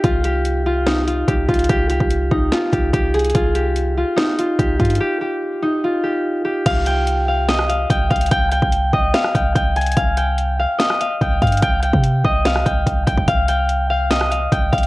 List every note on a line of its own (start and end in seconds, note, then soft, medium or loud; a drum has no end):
0.00 1.24 C2 loud
0.00 0.86 D#4 medium
0.00 0.66 F4 loud
0.00 0.24 G4 medium
0.00 kick loud
0.00 closed hi-hat medium
0.24 1.27 G4 medium
0.24 closed hi-hat medium
0.45 closed hi-hat medium
0.66 1.07 F4 medium
0.86 2.31 D#4 medium
0.86 snare loud
0.86 closed hi-hat medium
1.07 1.48 F4 medium
1.07 closed hi-hat medium
1.28 1.48 C2 loud
1.28 1.69 G4 medium
1.28 kick loud
1.28 closed hi-hat medium
1.48 1.69 C2 loud
1.48 2.52 F4 medium
1.48 kick medium
1.48 closed hi-hat soft
1.54 closed hi-hat medium
1.59 closed hi-hat medium
1.64 closed hi-hat medium
1.69 1.99 C2 loud
1.69 1.90 G4 loud
1.69 kick loud
1.69 closed hi-hat medium
1.90 2.72 G4 medium
1.90 closed hi-hat medium
2.00 2.30 C2 loud
2.00 kick medium
2.11 closed hi-hat medium
2.31 2.51 C2 loud
2.31 4.16 D#4 medium
2.31 kick medium
2.52 3.34 F4 medium
2.52 snare loud
2.52 closed hi-hat medium
2.73 2.93 C2 loud
2.73 2.93 G4 medium
2.73 kick medium
2.73 closed hi-hat medium
2.93 3.33 C2 loud
2.93 3.20 G4 medium
2.93 kick loud
2.93 closed hi-hat medium
3.14 3.61 G#4 medium
3.14 closed hi-hat soft
3.19 closed hi-hat medium
3.25 closed hi-hat medium
3.30 closed hi-hat medium
3.35 4.04 C2 loud
3.35 3.97 F4 loud
3.35 kick loud
3.35 closed hi-hat medium
3.55 4.59 G4 medium
3.55 closed hi-hat medium
3.76 closed hi-hat medium
3.97 4.38 F4 medium
4.16 5.62 D#4 medium
4.16 snare loud
4.16 closed hi-hat medium
4.39 4.79 F4 medium
4.39 closed hi-hat medium
4.59 4.79 C2 loud
4.59 5.00 G4 medium
4.59 kick loud
4.59 closed hi-hat medium
4.80 5.00 G2 loud
4.80 5.83 F4 medium
4.80 kick medium
4.80 closed hi-hat soft
4.85 closed hi-hat medium
4.90 closed hi-hat medium
4.95 closed hi-hat medium
5.00 5.21 G4 loud
5.21 6.03 G4 medium
5.62 8.33 D#4 medium
5.84 8.36 F4 medium
6.03 6.44 G4 medium
6.45 8.80 G4 medium
6.66 7.86 C2 loud
6.66 7.28 F5 loud
6.66 kick loud
6.66 closed hi-hat medium
6.66 crash loud
6.86 7.90 G5 medium
6.86 closed hi-hat medium
7.07 closed hi-hat medium
7.28 7.69 F5 medium
7.48 8.93 D#5 medium
7.48 snare loud
7.48 closed hi-hat medium
7.59 cross-stick loud
7.69 8.10 F5 medium
7.69 closed hi-hat medium
7.90 8.10 C2 loud
7.90 8.31 G5 medium
7.90 kick loud
7.90 closed hi-hat medium
8.10 8.31 C2 loud
8.10 9.14 F5 medium
8.10 kick medium
8.10 closed hi-hat soft
8.16 closed hi-hat medium
8.21 closed hi-hat medium
8.26 closed hi-hat medium
8.31 8.61 C2 loud
8.31 8.52 G5 loud
8.31 kick loud
8.31 closed hi-hat medium
8.52 9.34 G5 medium
8.52 closed hi-hat medium
8.62 8.92 C2 loud
8.62 kick loud
8.73 closed hi-hat medium
8.93 9.13 C2 loud
8.93 10.72 D#5 medium
8.93 kick medium
9.14 9.96 F5 medium
9.14 snare loud
9.14 closed hi-hat medium
9.24 cross-stick loud
9.35 9.55 C2 loud
9.35 9.55 G5 medium
9.35 kick medium
9.35 closed hi-hat medium
9.55 9.95 C2 loud
9.55 9.82 G5 medium
9.55 kick loud
9.55 closed hi-hat medium
9.76 10.23 G#5 medium
9.76 closed hi-hat soft
9.81 closed hi-hat medium
9.87 closed hi-hat medium
9.92 closed hi-hat medium
9.97 10.66 C2 loud
9.97 10.59 F5 loud
9.97 kick loud
9.97 closed hi-hat medium
10.17 11.21 G5 medium
10.17 closed hi-hat medium
10.38 closed hi-hat medium
10.60 11.00 F5 medium
10.78 12.24 D#5 loud
10.78 snare loud
10.78 closed hi-hat medium
10.90 cross-stick loud
11.01 11.41 F5 medium
11.01 closed hi-hat medium
11.21 11.41 C2 loud
11.21 11.62 G5 medium
11.21 kick loud
11.21 closed hi-hat medium
11.42 11.62 G2 loud
11.42 12.45 F5 medium
11.42 kick medium
11.42 closed hi-hat soft
11.47 closed hi-hat medium
11.52 closed hi-hat medium
11.57 closed hi-hat medium
11.62 11.92 C2 loud
11.62 11.82 G5 loud
11.62 kick loud
11.62 closed hi-hat medium
11.83 12.65 G5 medium
11.83 closed hi-hat medium
11.93 12.23 C3 loud
11.93 kick loud
12.04 closed hi-hat medium
12.24 12.64 C2 loud
12.24 14.03 D#5 medium
12.24 kick loud
12.45 13.27 F5 medium
12.45 snare loud
12.45 closed hi-hat medium
12.56 cross-stick loud
12.65 12.86 C2 loud
12.65 13.06 G5 medium
12.65 kick medium
12.65 closed hi-hat medium
12.87 13.06 C2 loud
12.87 kick medium
12.87 closed hi-hat medium
13.07 13.27 C2 loud
13.07 13.48 G5 medium
13.07 kick loud
13.07 closed hi-hat medium
13.18 kick loud
13.28 14.48 C2 loud
13.28 13.90 F5 loud
13.28 kick loud
13.28 closed hi-hat medium
13.48 14.52 G5 medium
13.48 closed hi-hat medium
13.69 closed hi-hat medium
13.90 14.31 F5 medium
14.11 14.87 D#5 medium
14.11 snare loud
14.11 closed hi-hat medium
14.21 cross-stick loud
14.31 14.72 F5 medium
14.31 closed hi-hat medium
14.52 14.72 C2 loud
14.52 14.87 G5 medium
14.52 kick loud
14.52 closed hi-hat medium
14.72 14.87 C2 loud
14.72 14.87 F5 medium
14.72 kick medium
14.72 closed hi-hat soft
14.78 closed hi-hat medium
14.83 closed hi-hat medium